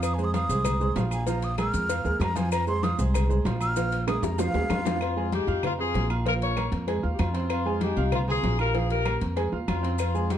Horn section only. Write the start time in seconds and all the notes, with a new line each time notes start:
4.71 C#4 F4
5.01 C4 F4
5.34 D#4 G4
5.64 C4 F4
5.79 F4 G#4
6.27 F4 A#4
6.43 A#4 C#5
7.13 G4
7.20 C#4 F4
7.52 C4 F4
7.82 D#4 G4
8.14 C4 F4
8.29 F4 G#4
8.59 G4 A#4
8.75 F4 G#4
8.90 G4 A#4
9.68 C#4 F4
9.99 C4 F4
10.32 D#4 G4